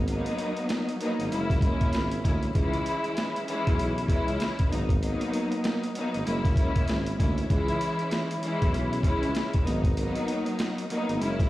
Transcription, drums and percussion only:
0.08 closed hi-hat medium
0.26 closed hi-hat medium
0.39 closed hi-hat medium
0.57 closed hi-hat soft
0.69 snare loud
0.69 closed hi-hat medium
0.89 closed hi-hat medium
1.01 closed hi-hat medium
1.20 closed hi-hat medium
1.32 closed hi-hat medium
1.50 kick loud
1.50 snare soft
1.50 closed hi-hat medium
1.61 kick medium
1.61 closed hi-hat medium
1.81 kick medium
1.81 closed hi-hat medium
1.93 snare loud
1.93 closed hi-hat medium
2.11 closed hi-hat medium
2.25 kick medium
2.25 closed hi-hat medium
2.43 closed hi-hat soft
2.55 kick loud
2.55 closed hi-hat medium
2.74 closed hi-hat medium
2.86 closed hi-hat medium
3.04 closed hi-hat soft
3.17 snare loud
3.17 closed hi-hat medium
3.36 closed hi-hat medium
3.48 closed hi-hat medium
3.67 kick loud
3.67 closed hi-hat medium
3.79 closed hi-hat medium
3.98 closed hi-hat medium
4.08 kick medium
4.08 closed hi-hat medium
4.28 closed hi-hat medium
4.40 snare loud
4.40 closed hi-hat medium
4.59 kick medium
4.59 closed hi-hat medium
4.73 closed hi-hat medium
4.89 kick medium
4.89 closed hi-hat soft
5.03 closed hi-hat medium
5.21 closed hi-hat medium
5.33 closed hi-hat medium
5.52 closed hi-hat soft
5.64 snare loud
5.64 closed hi-hat medium
5.83 closed hi-hat medium
5.95 closed hi-hat medium
6.14 closed hi-hat medium
6.27 closed hi-hat medium
6.45 kick loud
6.45 snare soft
6.45 closed hi-hat medium
6.56 kick medium
6.56 closed hi-hat medium
6.76 kick medium
6.76 closed hi-hat medium
6.88 snare loud
6.88 closed hi-hat medium
7.06 closed hi-hat medium
7.20 kick medium
7.20 closed hi-hat medium
7.38 closed hi-hat soft
7.50 kick loud
7.50 closed hi-hat medium
7.68 closed hi-hat medium
7.81 closed hi-hat medium
7.99 closed hi-hat soft
8.11 snare loud
8.11 closed hi-hat medium
8.31 closed hi-hat medium
8.43 closed hi-hat medium
8.62 kick loud
8.62 closed hi-hat medium
8.74 closed hi-hat medium
8.93 closed hi-hat medium
9.03 kick medium
9.03 closed hi-hat medium
9.23 closed hi-hat medium
9.35 snare loud
9.35 closed hi-hat medium
9.54 kick medium
9.54 closed hi-hat medium
9.67 closed hi-hat medium
9.84 kick medium
9.84 closed hi-hat soft
9.97 closed hi-hat medium
10.16 closed hi-hat medium
10.28 closed hi-hat medium
10.46 closed hi-hat soft
10.59 snare loud
10.59 closed hi-hat loud
10.78 closed hi-hat medium
10.90 closed hi-hat medium
11.09 closed hi-hat medium
11.21 closed hi-hat medium
11.40 kick loud
11.40 snare soft
11.40 closed hi-hat medium

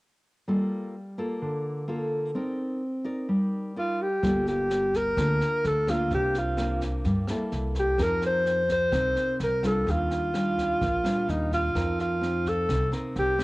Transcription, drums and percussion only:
4.23 kick medium
4.23 cross-stick soft
4.23 snare soft
4.47 snare soft
4.70 snare soft
4.94 kick soft
4.94 snare soft
5.17 kick medium
5.17 cross-stick medium
5.17 snare soft
5.40 snare soft
5.64 snare soft
5.87 kick soft
5.87 cross-stick soft
5.87 snare soft
6.10 kick soft
6.10 snare soft
6.34 snare soft
6.57 cross-stick medium
6.57 snare soft
6.81 kick soft
6.81 snare soft
7.04 kick medium
7.04 snare soft
7.27 cross-stick medium
7.27 snare soft
7.52 snare soft
7.75 kick soft
7.75 snare soft
7.98 kick soft
7.98 cross-stick soft
7.98 snare soft
8.21 snare soft
8.46 snare soft
8.69 kick soft
8.69 snare soft
8.92 kick medium
8.92 cross-stick medium
8.92 snare soft
9.16 snare soft
9.40 snare soft
9.63 kick soft
9.63 cross-stick soft
9.63 snare soft
9.87 kick medium
9.87 snare soft
10.11 snare soft
10.34 cross-stick medium
10.34 snare soft
10.58 kick soft
10.58 snare soft
10.81 kick medium
10.81 snare soft
11.05 cross-stick medium
11.05 snare soft
11.29 snare soft
11.52 kick soft
11.52 snare soft
11.75 kick soft
11.75 cross-stick medium
11.75 snare soft
11.99 snare soft
12.23 snare soft
12.45 kick soft
12.45 snare soft
12.69 kick medium
12.69 cross-stick medium
12.69 snare soft
12.92 snare soft
13.16 snare soft
13.39 kick soft
13.39 cross-stick medium
13.39 snare soft

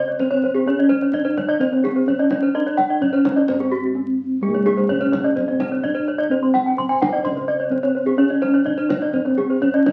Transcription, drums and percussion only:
0.19 kendang low soft
0.31 kendang slap soft
0.42 kendang low soft
0.55 kendang slap soft
0.90 kendang high soft
1.02 kendang slap soft
1.13 kendang low soft
1.25 kendang slap soft
1.37 kendang high soft
1.37 kendang low soft
1.49 kendang slap soft
1.61 kendang low soft
1.73 kendang slap soft
1.85 kendang high soft
2.08 kendang low soft
2.20 kendang slap soft
2.31 kendang high soft
2.67 kendang slap soft
2.78 kendang high soft
3.02 kendang low soft
3.14 kendang slap soft
3.25 kendang high soft
3.25 kendang low soft
3.37 kendang slap soft
3.48 kendang high soft
3.48 kendang low soft
3.60 kendang slap soft
4.54 kendang slap soft
4.66 kendang high soft
4.78 kendang slap soft
4.90 kendang low soft
5.01 kendang slap soft
5.13 kendang high soft
5.13 kendang low soft
5.37 kendang low soft
5.48 kendang slap soft
5.60 kendang high soft
5.84 kendang low soft
5.96 kendang slap soft
6.20 kendang slap soft
6.43 kendang slap soft
6.55 kendang high soft
6.67 kendang slap soft
6.79 kendang low soft
6.90 kendang slap soft
7.02 kendang high soft
7.02 kendang low soft
7.25 kendang high soft
7.25 kendang low soft
7.37 kendang slap soft
7.72 kendang low soft
7.83 kendang slap soft
8.07 kendang slap soft
8.30 kendang slap soft
8.42 kendang high soft
8.54 kendang slap soft
8.67 kendang low soft
8.78 kendang slap soft
8.90 kendang high soft
8.90 kendang low soft
9.02 kendang slap soft
9.13 kendang low soft
9.26 kendang slap soft
9.38 kendang high soft
9.62 kendang low soft
9.75 kendang slap soft
9.86 kendang high soft

